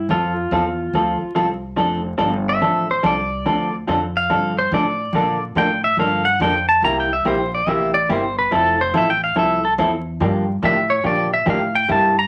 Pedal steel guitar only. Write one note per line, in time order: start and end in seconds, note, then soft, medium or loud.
0.00 0.10 E4 medium
0.11 1.32 F4 medium
2.49 2.88 E5 medium
2.91 3.04 C5 medium
3.06 3.75 D5 medium
4.17 4.56 F5 loud
4.59 4.72 C5 medium
4.74 5.43 D5 medium
5.58 5.84 G5 medium
5.84 5.98 E5 loud
6.00 6.26 F5 medium
6.25 6.40 F#5 medium
6.42 6.68 G5 loud
6.69 6.82 A5 loud
6.84 6.97 A#5 loud
7.00 7.12 G5 medium
7.13 7.26 E5 medium
7.27 7.53 C5 medium
7.55 7.69 D5 medium
7.69 7.94 E5 medium
7.94 8.08 D5 medium
8.12 8.38 C5 medium
8.39 8.52 B4 medium
8.55 8.81 A4 medium
8.81 8.94 C5 loud
8.97 9.09 E5 medium
9.10 9.23 G5 loud
9.24 9.36 F5 medium
9.39 9.64 E5 medium
9.65 9.73 A4 loud
10.65 10.91 E5 medium
10.90 11.04 C#5 loud
11.07 11.33 D5 medium
11.34 11.47 E5 loud
11.50 11.76 F5 medium
11.75 11.89 G5 loud
11.92 12.18 A5 loud
12.19 12.27 A#5 loud